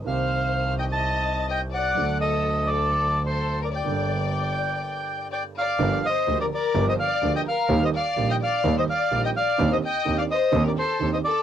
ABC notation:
X:1
M:4/4
L:1/16
Q:1/4=126
K:Gm
V:1 name="Bandoneon"
f6 g a4- a g2 ^f2- | ^f2 e4 d4- d c3 d g- | g12 g2 f2- | f2 e3 d d3 e f3 g f2- |
f e f3 g f3 e f3 g f2- | f e g3 f e3 d c3 e d2 |]
V:2 name="Violin section"
c6 e e4- e e2 d2- | d2 A4 A4- A A3 B d- | d12 d2 d2- | d2 c3 B B3 c d3 e B2- |
B c d3 e d3 c d3 e d2- | d c e3 d c3 B A3 c A2 |]
V:3 name="Grand piano" clef=bass
[C,,C,E,B,CG]16 | [D,,D,^F,A,^FA]16 | [G,,,G,,G,B,DA]16 | [G,,,G,,F,B,DG]2 z2 [D,,D,F,B,DG]2 z2 [G,,,G,,F,B,DG]2 z2 [D,,D,F,B,DG]2 z2 |
[E,,E,G,B,G]2 z2 [B,,,B,,E,G,B,G]2 z2 [E,,E,G,B,G]2 z2 [B,,,B,,E,G,B,G]2 z2 | [E,,E,CDG]2 z2 [E,,E,CDG]2 z2 [E,,E,CDG]2 z2 [E,,E,CDG]2 z2 |]
V:4 name="Double bass" clef=bass
C,,16 | D,,16 | G,,,8 z8 | G,,,2 z2 D,,2 z2 G,,,2 z2 D,,2 z2 |
E,,2 z2 B,,,2 z2 E,,2 z2 B,,,2 z2 | E,,2 z2 E,,2 z2 E,,2 z2 E,,2 z2 |]